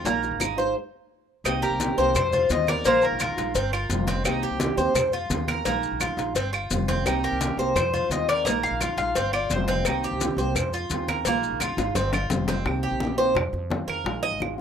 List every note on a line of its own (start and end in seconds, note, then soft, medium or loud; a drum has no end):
0.04 0.30 A#1 loud
0.04 0.39 D#3 medium
0.04 0.39 G#3 medium
0.04 0.39 A#3 medium
0.04 0.40 D#4 medium
0.04 0.40 F4 medium
0.04 high bongo medium
0.04 high conga soft
0.04 maracas medium
0.22 high bongo soft
0.22 high conga soft
0.22 maracas soft
0.31 0.73 G#1 medium
0.40 0.57 D#3 soft
0.40 0.57 G#3 medium
0.40 0.57 D#4 medium
0.40 0.56 F4 medium
0.40 high bongo medium
0.40 high conga medium
0.40 claves medium
0.40 maracas medium
0.57 0.75 G#3 medium
0.57 0.75 D#4 medium
0.57 0.74 F4 medium
0.57 0.75 C5 medium
0.57 high bongo soft
0.57 high conga soft
0.57 maracas soft
1.44 1.70 C2 medium
1.44 1.80 C3 medium
1.44 1.80 D#3 medium
1.44 1.80 A#3 medium
1.44 1.80 C4 medium
1.44 1.62 D#4 medium
1.44 1.80 G4 medium
1.44 cowbell loud
1.44 high conga soft
1.44 claves medium
1.44 maracas medium
1.62 1.96 G4 medium
1.62 2.12 A#4 medium
1.62 high conga soft
1.62 maracas soft
1.70 1.88 C2 medium
1.80 1.97 D#3 soft
1.80 1.98 A#3 medium
1.80 1.98 C4 medium
1.80 1.97 G4 medium
1.80 cowbell medium
1.80 high conga loud
1.80 maracas medium
1.97 2.14 C2 medium
1.97 2.15 D#3 medium
1.97 2.15 A#3 medium
1.97 2.15 C4 medium
1.97 2.15 G4 medium
1.97 2.32 C5 medium
1.97 high conga soft
1.97 maracas soft
2.15 2.48 F2 loud
2.15 2.51 C5 medium
2.15 muted nylon-string guitar stroke medium
2.15 cowbell loud
2.15 high conga soft
2.15 low conga medium
2.15 claves medium
2.15 maracas medium
2.33 2.67 F4 medium
2.33 high conga soft
2.33 low conga medium
2.33 maracas soft
2.50 2.84 D#2 loud
2.50 2.85 D#3 medium
2.50 2.85 G#3 medium
2.50 2.85 C4 medium
2.50 2.85 F4 medium
2.50 2.69 D#5 loud
2.50 cowbell medium
2.50 high conga medium
2.50 maracas medium
2.67 2.85 A#4 medium
2.67 2.87 D5 loud
2.67 cowbell medium
2.67 high conga medium
2.67 claves medium
2.67 maracas soft
2.84 3.10 A#1 loud
2.84 3.20 D#3 medium
2.84 3.20 G#3 medium
2.84 3.19 A#3 medium
2.84 3.20 D#4 medium
2.84 3.21 F4 medium
2.84 3.04 C5 loud
2.84 cowbell loud
2.84 high conga soft
2.84 maracas medium
3.02 3.22 A#4 medium
3.02 high conga soft
3.02 maracas soft
3.12 3.28 A#1 medium
3.20 3.37 D#3 medium
3.20 3.37 G#3 medium
3.20 3.37 D#4 soft
3.20 3.54 F4 medium
3.20 3.36 F4 medium
3.20 4.05 A#4 medium
3.20 cowbell medium
3.20 high conga medium
3.20 claves medium
3.20 maracas medium
3.37 3.54 A#1 loud
3.37 3.55 G#3 medium
3.37 3.55 D#4 medium
3.37 3.54 F4 medium
3.37 cowbell medium
3.37 high conga soft
3.37 maracas soft
3.55 3.88 G1 loud
3.55 3.72 C4 medium
3.55 muted nylon-string guitar stroke medium
3.55 cowbell loud
3.55 high conga soft
3.55 maracas medium
3.72 4.07 F4 medium
3.72 high conga soft
3.72 claves medium
3.72 maracas soft
3.90 4.23 F1 loud
3.90 4.24 F3 medium
3.90 4.25 G3 medium
3.90 4.25 C4 medium
3.90 4.25 F4 medium
3.90 cowbell medium
3.90 high conga medium
3.90 maracas medium
4.07 4.25 C4 loud
4.07 cowbell medium
4.07 high conga medium
4.07 maracas soft
4.24 4.50 C2 loud
4.24 4.59 C3 medium
4.24 4.58 D#3 medium
4.24 4.59 A#3 medium
4.24 4.60 C4 medium
4.24 4.42 D#4 medium
4.24 4.60 G4 medium
4.24 cowbell loud
4.24 high conga soft
4.24 claves medium
4.24 maracas medium
4.42 4.77 G4 medium
4.42 high conga soft
4.42 maracas soft
4.50 4.68 C2 medium
4.60 4.77 D#3 medium
4.60 4.77 A#3 medium
4.60 4.77 C4 medium
4.60 4.77 G4 medium
4.60 cowbell medium
4.60 high conga loud
4.60 maracas medium
4.77 4.94 D#2 loud
4.77 4.94 D#3 medium
4.77 4.95 A#3 medium
4.77 4.94 C4 medium
4.77 4.95 G4 medium
4.77 5.12 C5 medium
4.77 high conga soft
4.77 maracas soft
4.94 5.28 F2 loud
4.94 muted nylon-string guitar stroke medium
4.94 cowbell loud
4.94 high conga soft
4.94 low conga medium
4.94 claves medium
4.94 maracas medium
5.12 5.47 F4 medium
5.12 high conga soft
5.12 maracas soft
5.30 5.64 D#2 loud
5.30 5.65 D#3 medium
5.30 5.65 G#3 medium
5.30 5.66 C4 medium
5.30 5.66 F4 medium
5.30 cowbell medium
5.30 high conga loud
5.30 maracas medium
5.48 5.65 A#4 medium
5.48 cowbell medium
5.48 high conga medium
5.48 claves medium
5.48 maracas soft
5.65 5.90 A#1 loud
5.65 6.00 D#3 medium
5.65 6.00 G#3 medium
5.65 6.00 A#3 medium
5.65 6.01 D#4 medium
5.65 6.01 F4 medium
5.65 cowbell loud
5.65 high conga soft
5.65 maracas medium
5.82 high conga soft
5.82 maracas soft
5.91 6.08 A#1 medium
6.00 6.18 D#3 soft
6.00 6.18 G#3 medium
6.00 6.17 D#4 medium
6.00 6.35 F4 medium
6.00 6.16 F4 medium
6.00 cowbell medium
6.00 high conga medium
6.00 claves medium
6.00 maracas medium
6.17 6.34 A#1 loud
6.17 6.35 G#3 medium
6.17 6.35 D#4 medium
6.17 6.35 F4 medium
6.17 cowbell medium
6.17 high conga soft
6.17 maracas soft
6.35 6.68 G1 loud
6.35 6.52 C4 medium
6.35 muted nylon-string guitar stroke medium
6.35 cowbell loud
6.35 high conga soft
6.35 maracas medium
6.53 6.87 F4 medium
6.53 high conga soft
6.53 claves medium
6.53 maracas soft
6.71 7.04 F1 loud
6.71 7.05 F3 medium
6.71 7.05 G3 medium
6.71 7.05 C4 medium
6.71 7.06 F4 medium
6.71 cowbell medium
6.71 high conga medium
6.71 maracas medium
6.88 7.05 C4 medium
6.88 cowbell medium
6.88 high conga medium
6.88 maracas soft
7.05 7.31 C2 medium
7.05 7.40 C3 medium
7.05 7.40 D#3 medium
7.05 7.40 A#3 medium
7.05 7.40 C4 medium
7.05 7.23 D#4 medium
7.05 7.40 G4 medium
7.05 cowbell loud
7.05 high conga soft
7.05 claves medium
7.05 maracas medium
7.24 7.58 G4 medium
7.24 7.72 A#4 medium
7.24 high conga soft
7.24 maracas soft
7.32 7.48 C2 medium
7.41 7.58 A#3 medium
7.41 7.57 G4 medium
7.41 cowbell medium
7.41 high conga loud
7.41 maracas medium
7.57 7.74 C2 loud
7.57 7.76 D#3 medium
7.57 7.76 A#3 medium
7.57 7.75 C4 medium
7.57 7.75 G4 medium
7.57 7.93 C5 medium
7.57 high conga soft
7.57 maracas soft
7.75 8.09 F2 loud
7.75 8.12 C5 medium
7.75 muted nylon-string guitar stroke medium
7.75 cowbell loud
7.75 high conga soft
7.75 low conga medium
7.75 claves medium
7.75 maracas medium
7.94 8.27 F4 medium
7.94 high conga soft
7.94 low conga medium
7.94 maracas soft
8.10 8.43 D#2 loud
8.10 8.46 D#3 medium
8.10 8.46 G#3 medium
8.10 8.46 C4 medium
8.10 8.28 D#5 loud
8.10 cowbell medium
8.10 high conga medium
8.10 maracas medium
8.14 8.47 F4 medium
8.29 8.46 A#4 medium
8.29 8.45 D5 loud
8.29 cowbell medium
8.29 claves medium
8.29 maracas soft
8.45 8.70 A#1 loud
8.45 8.80 D#3 medium
8.45 8.81 G#3 medium
8.45 8.80 A#3 medium
8.45 8.81 D#4 medium
8.45 8.81 F4 medium
8.45 8.50 D#5 loud
8.45 cowbell loud
8.45 high conga soft
8.45 maracas medium
8.63 8.97 F5 loud
8.63 high conga soft
8.63 maracas soft
8.71 8.88 A#1 medium
8.81 8.98 D#3 medium
8.81 8.98 G#3 soft
8.81 8.99 D#4 medium
8.81 9.15 F4 medium
8.81 8.98 F4 medium
8.81 cowbell medium
8.81 high conga medium
8.81 claves medium
8.81 maracas medium
8.97 9.14 A#1 loud
8.97 9.16 G#3 medium
8.97 9.16 D#4 medium
8.97 9.16 F4 medium
8.97 9.33 F5 loud
8.97 cowbell medium
8.97 high conga soft
8.97 maracas soft
9.15 9.49 G1 loud
9.15 9.33 C4 medium
9.15 muted nylon-string guitar stroke medium
9.15 cowbell loud
9.15 high conga soft
9.15 maracas medium
9.33 9.67 F4 medium
9.33 9.52 D5 medium
9.33 high conga soft
9.33 claves medium
9.33 maracas soft
9.50 9.84 F1 loud
9.50 9.85 F3 medium
9.50 9.86 G3 medium
9.50 9.86 C4 medium
9.50 9.86 F4 medium
9.50 9.76 C5 medium
9.50 cowbell medium
9.50 high conga medium
9.50 maracas medium
9.68 9.85 C4 loud
9.68 cowbell medium
9.68 high conga medium
9.68 maracas soft
9.85 10.10 C2 medium
9.85 10.21 C3 medium
9.85 10.21 D#3 medium
9.85 10.21 A#3 medium
9.85 10.21 C4 medium
9.85 10.03 D#4 medium
9.85 10.21 G4 medium
9.85 cowbell loud
9.85 high conga soft
9.85 claves medium
9.85 maracas medium
10.04 10.38 G4 medium
10.04 high conga soft
10.04 maracas soft
10.11 10.28 C2 medium
10.21 10.38 D#3 medium
10.21 10.38 A#3 medium
10.21 10.39 C4 medium
10.21 10.38 G4 medium
10.21 cowbell medium
10.21 high conga loud
10.21 maracas medium
10.37 10.54 C2 loud
10.37 10.56 A#3 medium
10.37 10.56 C4 medium
10.37 10.55 G4 medium
10.37 10.72 C5 medium
10.37 high conga soft
10.37 maracas soft
10.41 10.56 D#3 medium
10.55 10.89 F2 loud
10.55 muted nylon-string guitar stroke medium
10.55 cowbell loud
10.55 high conga soft
10.55 low conga medium
10.55 claves medium
10.55 maracas medium
10.73 11.07 F4 medium
10.73 high conga soft
10.73 maracas soft
10.90 11.24 D#2 loud
10.90 11.25 D#3 medium
10.90 11.25 G#3 medium
10.90 11.26 C4 medium
10.90 11.26 F4 medium
10.90 cowbell medium
10.90 high conga medium
10.90 maracas medium
11.08 11.25 A#4 medium
11.08 cowbell medium
11.08 high conga medium
11.08 claves medium
11.08 maracas soft
11.25 11.50 A#1 loud
11.25 11.60 D#3 medium
11.25 11.60 G#3 medium
11.25 11.60 A#3 medium
11.25 11.61 D#4 medium
11.25 11.61 F4 medium
11.25 cowbell loud
11.25 high conga soft
11.25 maracas medium
11.43 high conga soft
11.43 maracas soft
11.51 11.68 A#1 medium
11.60 11.78 D#3 soft
11.60 11.78 G#3 medium
11.60 11.78 D#4 medium
11.60 11.95 F4 medium
11.60 11.77 F4 medium
11.60 cowbell medium
11.60 high conga medium
11.60 claves medium
11.60 maracas medium
11.77 11.94 G#1 loud
11.77 11.96 G#3 medium
11.77 11.96 D#4 medium
11.77 11.95 F4 medium
11.77 cowbell medium
11.77 high bongo medium
11.77 high conga soft
11.77 maracas soft
11.95 12.29 G1 loud
11.95 12.13 C4 medium
11.95 muted nylon-string guitar stroke medium
11.95 cowbell loud
11.95 low bongo medium
11.95 high conga soft
11.95 maracas medium
12.13 12.47 F4 medium
12.13 low bongo loud
12.13 claves medium
12.13 maracas soft
12.30 12.64 F1 loud
12.30 12.65 F3 medium
12.30 12.66 G3 medium
12.30 12.66 C4 medium
12.30 12.66 F4 medium
12.30 cowbell medium
12.30 low bongo loud
12.30 high conga loud
12.30 maracas medium
12.48 12.65 C4 medium
12.48 cowbell medium
12.48 low bongo loud
12.48 high conga medium
12.48 maracas soft
12.65 12.90 C2 medium
12.65 13.00 C3 medium
12.65 13.00 D#3 medium
12.65 13.00 A#3 medium
12.65 13.01 C4 medium
12.65 13.01 G4 medium
12.65 high bongo medium
12.65 high conga soft
12.65 claves medium
12.83 13.16 G4 medium
12.92 13.33 A#1 medium
13.00 13.18 D#3 medium
13.00 13.18 A#3 medium
13.00 13.17 C4 medium
13.00 13.17 G4 medium
13.00 high bongo medium
13.00 high conga loud
13.18 13.35 D#3 medium
13.18 13.36 A#3 medium
13.18 13.35 C4 medium
13.18 13.35 G4 medium
13.18 13.35 C5 medium
13.18 high bongo soft
13.18 high conga soft
13.35 13.52 F2 loud
13.35 muted nylon-string guitar stroke medium
13.35 high bongo medium
13.35 high conga soft
13.35 low conga medium
13.35 claves medium
13.53 13.86 F2 loud
13.53 high bongo soft
13.53 high conga soft
13.70 14.04 D#3 soft
13.70 14.04 G#3 medium
13.70 14.05 C4 medium
13.70 14.05 F4 medium
13.70 high bongo medium
13.70 low bongo medium
13.70 high conga medium
13.87 14.03 F2 medium
13.87 14.20 A#4 medium
13.87 high bongo soft
13.87 claves medium
14.04 14.30 A#1 loud
14.04 14.39 D#3 medium
14.04 14.40 G#3 medium
14.04 14.40 D#4 medium
14.04 14.40 F4 medium
14.04 high bongo medium
14.04 high conga soft
14.23 14.40 D#5 loud
14.23 high bongo soft
14.23 high conga soft
14.31 14.61 G#1 medium
14.40 14.57 D#3 medium
14.40 14.58 G#3 medium
14.40 14.57 D#4 medium
14.40 14.57 F4 medium
14.40 high bongo medium
14.40 high conga medium
14.40 claves medium
14.58 14.61 F4 medium